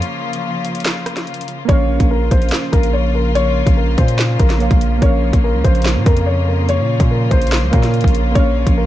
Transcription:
Already playing: string section C#3 F3 A#3 F4
0.02 closed hi-hat
0.33 closed hi-hat
0.65 closed hi-hat
0.75 closed hi-hat
0.80 closed hi-hat
0.85 snare, clap, closed hi-hat
0.91 closed hi-hat
1.06 cross-stick, closed hi-hat
1.17 snare, closed hi-hat
1.27 closed hi-hat
1.34 closed hi-hat
1.41 closed hi-hat
1.48 closed hi-hat
1.65 808-style bass A#1, string section C#3 F3 A#3 F4, synth keys A#3 A#4, grand piano C#5, kick, closed hi-hat
1.70 synth keys C#4 F5
2.00 808-style bass A#1, kick, closed hi-hat
2.11 grand piano A#4
2.31 808-style bass A#1, grand piano C5, kick, closed hi-hat
2.42 closed hi-hat
2.49 snare, closed hi-hat
2.53 clap, closed hi-hat
2.72 808-style bass A#1, grand piano A#4, kick, closed hi-hat
2.83 closed hi-hat
2.93 grand piano C#5
3.15 grand piano A#4
3.35 grand piano C#5, closed hi-hat
3.67 808-style bass A#1, kick, closed hi-hat
3.77 grand piano A#4
3.98 808-style bass A#2, grand piano C5, kick, closed hi-hat
4.08 closed hi-hat
4.19 snare, clap
4.39 808-style bass A#1, grand piano A#4, kick, closed hi-hat
4.50 snare, closed hi-hat
4.58 synth keys A#3 A#4 C#5 F5, closed hi-hat
4.71 808-style bass A#1, kick, closed hi-hat
4.81 closed hi-hat
4.98 808-style bass A#1, synth keys A#3 A#4, string section F4, kick, closed hi-hat
5.02 synth keys C#4 F5, grand piano C#5
5.33 808-style bass A#1, kick, closed hi-hat
5.44 grand piano A#4
5.54 808-style bass C#2
5.64 808-style bass A#1, grand piano C5, kick, closed hi-hat
5.75 closed hi-hat
5.82 snare, closed hi-hat
5.86 clap, closed hi-hat
5.96 808-style bass A#2
6.06 808-style bass F2, grand piano A#4, kick, closed hi-hat
6.17 closed hi-hat
6.26 grand piano C#5
6.48 grand piano A#4
6.69 grand piano C#5, closed hi-hat
6.79 808-style bass A#2
7.00 808-style bass A#2, kick, closed hi-hat
7.11 grand piano A#4
7.31 808-style bass A#1, grand piano C5, kick, closed hi-hat
7.42 closed hi-hat
7.47 closed hi-hat
7.52 snare, clap, closed hi-hat
7.57 closed hi-hat
7.63 808-style bass C#2
7.71 808-style bass A#2, synth keys A#3 A#4 C#5 F5, grand piano A#4, kick, cross-stick, closed hi-hat
7.83 snare, closed hi-hat
7.94 closed hi-hat
8.01 808-style bass A#1, kick, closed hi-hat
8.08 closed hi-hat
8.15 closed hi-hat
8.32 808-style bass A#1, synth keys A#3 A#4, grand piano C#5, kick, closed hi-hat
8.37 synth keys C#4 F5
8.67 808-style bass A#1, kick, closed hi-hat
8.77 grand piano A#4

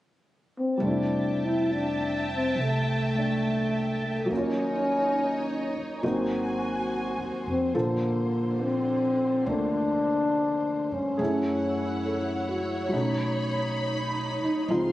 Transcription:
0.58 trombone C4
0.78 upright bass F1, grand piano G3 A3, string section G5 A5
0.82 grand piano C4, trombone D4, string section E5
0.89 grand piano E4
1.46 trombone E4
1.73 trombone D4
2.35 trombone C4
2.56 upright bass C2
2.61 trombone A3
3.15 grand piano A3 D4
4.07 trombone A3
4.26 grand piano F#3 A#3
4.30 upright bass D#2, grand piano C#4, string section D#4 C#5 D#5
4.34 trombone C#4, grand piano F4
5.76 muted upright bass stroke
6.03 upright bass G#1, grand piano F#3 A#3 C4 D#4, string section F#4 C5 G#5
7.17 upright bass D#2
7.47 upright bass F2
7.51 trombone C4
7.74 upright bass A#1, string section D3, grand piano D3 F3 A4 C5, trombone A#3
8.62 trombone C4
9.47 upright bass D2, grand piano A3 A#3, trombone D4
10.92 upright bass G2, trombone C#4
11.17 upright bass F#2, grand piano A3 C#4 G#4, string section E4 C#5 F#5
11.23 grand piano E4
12.06 grand piano A4
12.49 grand piano F#4
12.89 upright bass B1, grand piano F#3 A3, string section B5
12.93 grand piano C#4 D#4, string section D#4
14.42 trombone D#4, muted upright bass stroke
14.68 upright bass C#2, grand piano F3 G#3 C4 D#4, trombone F4, string section C5 F5 C6

